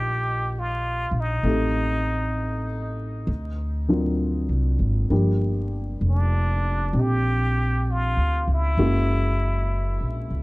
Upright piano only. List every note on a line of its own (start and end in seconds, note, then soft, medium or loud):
0.00 1.42 A#3 soft
0.00 1.43 D#4 soft
0.00 1.45 F4 soft
0.00 1.44 G4 soft
0.00 1.46 A#4 soft
0.00 1.47 D5 medium
0.00 1.47 D#5 soft
1.44 3.28 A3 soft
1.44 3.28 C4 soft
1.44 3.28 D#4 soft
1.44 3.28 G4 soft
1.44 3.29 A4 soft
3.88 5.11 F#3 soft
3.88 5.11 C4 soft
3.88 5.09 D4 soft
3.88 5.12 F4 soft
3.88 5.12 A#4 soft
5.10 8.79 F3 soft
5.10 8.78 G3 soft
5.10 8.77 A#3 soft
5.10 8.78 D4 soft
5.10 6.95 G4 medium
6.94 8.78 C4 soft
6.94 8.79 G4 soft
8.79 10.43 G#3 soft
8.79 10.43 A#3 soft
8.79 10.43 C#4 soft
8.79 10.43 E4 soft
8.79 10.43 F#4 medium